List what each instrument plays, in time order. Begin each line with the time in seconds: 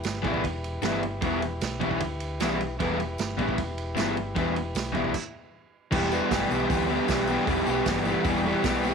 Already playing: transistor combo organ E4 G4 B4
0.04 picked electric bass G1, snare, ride, tambourine
0.22 picked electric bass A1, overdriven electric guitar E2 B2 E3 G3 B3 E4, kick, ride
0.34 kick
0.44 picked electric bass E1, kick, ride
0.64 ride
0.81 picked electric bass G1, overdriven electric guitar E2 B2 E3 G3 B3 E4, snare, ride, tambourine
1.03 ride
1.22 picked electric bass E1, overdriven electric guitar E2 B2 E3 G3 B3 E4, kick, ride
1.42 ride
1.61 picked electric bass B1, snare, ride, tambourine
1.80 overdriven electric guitar E2 B2 E3 G3 B3 E4, kick, ride
1.91 kick
2.00 picked electric bass D2, kick, ride
2.20 ride
2.40 picked electric bass B1, overdriven electric guitar E2 B2 E3 G3 B3, snare, ride, tambourine
2.44 overdriven electric guitar E4
2.61 ride
2.77 picked electric bass E1, overdriven electric guitar E2 B2 E3, transistor combo organ E4 G4, kick, ride
2.81 overdriven electric guitar G3 B3 E4, transistor combo organ B4
3.00 ride
3.18 picked electric bass G1, snare, ride, tambourine
3.37 picked electric bass A1, overdriven electric guitar E2 B2 E3 G3 B3 E4, kick, ride
3.49 kick
3.58 picked electric bass E1, kick, ride
3.78 ride
3.95 picked electric bass G1, overdriven electric guitar E2 B2 E3 G3 B3 E4, snare, ride, tambourine
4.17 ride
4.35 picked electric bass E1, overdriven electric guitar E2 B2 E3 G3 B3 E4, kick, ride
4.56 ride
4.74 picked electric bass B1, snare, ride, tambourine
4.92 overdriven electric guitar E2 B2 E3 G3 B3 E4, kick, ride
5.04 kick
5.14 kick, crash
5.90 picked electric bass E1, overdriven electric guitar E2 B2 E3 G3 B3 G4, transistor combo organ E4 G4, kick, crash
5.94 transistor combo organ B4
6.11 overdriven electric guitar E2 B2 E3 G3 B3 G4, tambourine
6.29 picked electric bass G1, overdriven electric guitar E2 B2 E3 G3 B3 G4, kick, snare, open hi-hat, tambourine
6.49 picked electric bass B1, overdriven electric guitar E2 B2 E3 G3 B3 G4, tambourine
6.68 picked electric bass D2, overdriven electric guitar E2 B2 E3 G3 B3 G4, kick, open hi-hat, tambourine
6.88 overdriven electric guitar E2 B2 E3 G3 B3 G4, tambourine
7.08 picked electric bass B1, overdriven electric guitar E2 B2 E3 G3 B3 G4, kick, snare, open hi-hat, tambourine
7.27 overdriven electric guitar E2 B2 E3 G3 B3 G4, tambourine
7.46 picked electric bass E1, overdriven electric guitar E2 B2 E3 G3 B3 G4, kick, open hi-hat
7.66 picked electric bass B1, overdriven electric guitar E2 B2 E3 G3 B3 G4, tambourine
7.85 picked electric bass G1, overdriven electric guitar E2 B2 E3 G3 B3, kick, snare, open hi-hat, tambourine
7.90 overdriven electric guitar G4
8.05 overdriven electric guitar E2 B2 E3 G3 B3 G4, tambourine
8.24 picked electric bass E1, overdriven electric guitar E2 B2 E3 G3 B3 G4, kick, open hi-hat, tambourine
8.44 overdriven electric guitar E2 B2 E3 G3 B3 G4
8.64 picked electric bass B1, overdriven electric guitar E2 B2 E3 G3 B3 G4, kick, snare, open hi-hat, tambourine
8.83 overdriven electric guitar E2 B2 E3 G3 B3 G4, tambourine